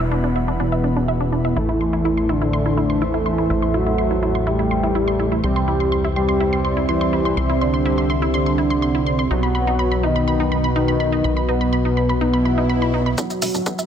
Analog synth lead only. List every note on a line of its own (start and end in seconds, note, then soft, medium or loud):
0.00 0.50 B3 medium
0.60 1.58 B3 loud
1.57 2.31 E4 loud
2.29 3.03 D4 loud
3.02 3.76 E4 loud
3.74 4.49 F#4 medium
4.47 5.34 G4 loud
5.44 6.07 G4 loud
6.16 6.79 G4 medium
6.89 7.52 E4 medium
7.61 8.25 D4 medium
8.34 9.21 D4 medium
9.31 10.05 F#4 loud
10.03 10.66 D#4 medium
10.76 11.39 D#4 medium
11.49 12.12 B3 loud
12.21 13.08 B3 loud
13.18 13.86 F#4 loud